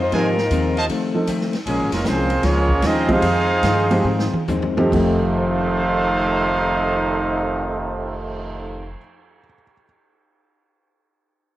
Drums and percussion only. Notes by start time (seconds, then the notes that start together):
0.12 kick, ride
0.38 snare
0.51 kick, hi-hat pedal, ride
0.77 ride
0.89 kick, ride
1.27 kick, hi-hat pedal, ride
1.41 snare
1.53 snare, ride
1.66 kick, ride
1.92 snare, ride
2.04 kick, snare, hi-hat pedal
2.30 ride
2.43 kick, snare, ride
2.69 kick
2.82 kick, snare, hi-hat pedal, ride
3.09 kick, ride
3.22 kick, ride
3.63 kick, snare, hi-hat pedal, ride
3.91 ride
4.19 snare
4.33 high tom
4.48 floor tom, hi-hat pedal
4.62 floor tom
4.77 floor tom
4.92 kick, crash
5.22 cymbal swell